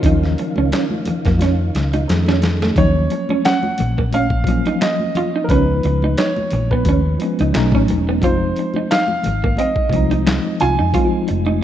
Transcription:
Already playing: C#3 D#3 F3 A#3 C#4 D#4 F4 F#4 A#4 C#5 F5
0.03 D#2 F3 F#3 C#4 D#4, kick, closed hi-hat, muted conga
0.24 snare
0.38 muted clean electric guitar stroke, closed hi-hat, muted conga
0.56 C#2 C#4, high conga
0.72 C#4, finger snap, snare, closed hi-hat
0.90 high conga
1.05 muted clean electric guitar stroke, muted fingered electric bass stroke, closed hi-hat, muted conga, low conga
1.25 F2 A#3, kick, snare, closed hi-hat
1.39 C#4, snare, closed hi-hat, muted conga, high conga
1.75 C#2, muted clean electric guitar stroke, snare, closed hi-hat, muted conga
1.93 D#4, closed hi-hat, high conga
2.08 F2 D#3 F3 A3 C#4 D#4 G#4 A4, snare, closed hi-hat
2.26 C#4, snare, high conga
2.42 muted clean electric guitar stroke, snare, closed hi-hat, muted conga, low conga
2.62 A3, snare
2.75 D#2 F3 F#3 A#3 D#4 C#5, kick, closed hi-hat, muted conga, low conga
2.79 C#4
3.10 muted clean electric guitar stroke, closed hi-hat, muted conga
3.29 C#4, high conga
3.45 C#4 F#5, finger snap, snare, closed hi-hat
3.63 high conga
3.78 A#1, muted clean electric guitar stroke, closed hi-hat, muted conga, low conga
3.98 A#3, kick
4.12 C#4 F5, closed hi-hat, high conga
4.30 kick
4.44 F3 F#3, kick, closed hi-hat, muted conga
4.49 A#3 C#4, muted clean electric guitar stroke
4.66 D#4, closed hi-hat, high conga
4.81 D#5, finger snap, muted clean electric guitar stroke, snare, closed hi-hat, muted conga
5.00 high conga
5.15 F4, closed hi-hat, low conga
5.36 D#4
5.44 F3 A#4
5.49 C#2 G#3 B3 C#4 D#4 B4, kick, closed hi-hat, low conga
5.83 C#2, muted clean electric guitar stroke, closed hi-hat, muted conga
6.02 D#4, high conga
6.17 D#4 C#5, finger snap, snare, closed hi-hat
6.36 muted fingered electric bass stroke, high conga
6.51 A#1, muted clean electric guitar stroke, closed hi-hat, muted conga, low conga
6.71 B3 B4, kick
6.85 D#2 C#4, kick, closed hi-hat, muted conga, high conga
7.18 F3 G#3 B3, muted clean electric guitar stroke, closed hi-hat, muted conga
7.23 C#4
7.39 C#2 D#4, closed hi-hat, high conga
7.53 B1 F#3 A3 C#4, finger snap, snare, closed hi-hat
7.57 D#4
7.72 A1 C#4, kick, high conga
7.88 E1, muted clean electric guitar stroke, closed hi-hat, muted conga, low conga
8.09 B3
8.21 F1 F3 G#3 C4 F4 C5, kick, closed hi-hat, muted conga, low conga
8.26 D#4
8.56 muted clean electric guitar stroke, closed hi-hat, muted conga
8.74 D#4, high conga
8.91 D#4 F5, finger snap, snare, closed hi-hat
9.08 high conga
9.23 G#1, muted clean electric guitar stroke, closed hi-hat, muted conga, low conga
9.44 A#3, kick
9.57 C4 D#5, closed hi-hat, high conga
9.76 kick
9.89 C2 F3 G3, kick, closed hi-hat, muted conga
9.94 C4 D#4, muted clean electric guitar stroke
9.99 G#3
10.11 D#4, closed hi-hat, high conga
10.27 finger snap, muted clean electric guitar stroke, snare, closed hi-hat
10.44 high conga
10.60 C2 F4 G#5, closed hi-hat, muted conga, low conga
10.79 F2 D#4
10.94 F3 G#3 C4 F4, kick, closed hi-hat, low conga
10.98 D#4
11.05 F4
11.28 F1, muted clean electric guitar stroke, closed hi-hat, muted conga
11.46 D#4, high conga

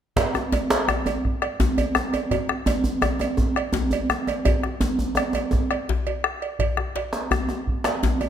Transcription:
0.16 bombo low, cowbell, djembe slap, djembe bass
0.34 bombo rim, djembe slap, djembe tone
0.52 cowbell, djembe slap, djembe bass
0.70 djembe slap
0.88 bombo rim, cowbell, djembe slap, djembe tone, djembe bass
1.06 cowbell, djembe tone, djembe bass
1.25 bombo rim, bombo low
1.42 bombo rim, cowbell
1.60 djembe slap, djembe bass
1.78 cowbell, djembe tone, djembe bass
1.95 bombo rim, djembe tone
2.13 bombo rim, cowbell, djembe tone
2.31 bombo low, cowbell, djembe tone, djembe bass
2.49 bombo rim, djembe slap, djembe tone
2.66 cowbell, djembe slap, djembe bass
2.84 djembe bass
3.02 bombo rim, cowbell, djembe slap, djembe tone, djembe bass
3.19 cowbell, djembe tone
3.37 bombo rim, bombo low, djembe tone
3.56 bombo rim, cowbell
3.73 djembe slap, djembe bass
3.91 cowbell, djembe tone, djembe bass
4.10 bombo rim, djembe tone
4.27 bombo rim, cowbell, djembe tone
4.45 bombo low, cowbell, djembe tone, djembe bass
4.63 bombo rim, djembe slap, djembe tone
4.81 djembe slap, djembe bass
4.99 djembe bass
5.15 bombo rim, cowbell, djembe tone
5.33 cowbell, djembe tone
5.35 djembe tone
5.51 bombo rim, bombo low, djembe tone
5.71 bombo rim, cowbell
5.89 djembe slap, djembe bass
6.07 cowbell, djembe tone
6.24 bombo rim
6.42 bombo rim, cowbell
6.59 bombo low, cowbell, djembe slap, djembe bass
6.77 bombo rim, djembe tone
6.96 cowbell, djembe slap
7.13 djembe slap
7.31 bombo rim, djembe bass
7.48 djembe tone
7.67 bombo low
7.84 bombo rim, cowbell, djembe slap
8.03 djembe slap, djembe bass
8.21 bombo rim, cowbell, djembe slap, djembe tone

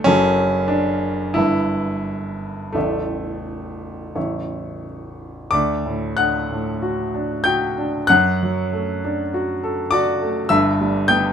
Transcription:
0.04 F#1 F#2 C#4 F#4 A4 A5
0.68 D4
1.34 G1 G2 E4 B4 E5
2.73 A0 A1 A3 E4 D5 E5
4.15 A0 A1 E4 C#5 E5
5.51 D2 D5 D6
5.86 A2
6.17 D4 F#5 F#6
6.51 A2
6.82 F#4
7.14 D4
7.44 F#4 G5 G6
7.78 D4
8.07 F#2 F#5 F#6
8.43 F#3
8.73 A3
9.04 D4
9.34 F#4
9.64 A4
9.91 F#4 D5 D6
10.22 A3
10.49 G1 G2 E5 E6
10.81 G3
11.08 B3 G5 G6

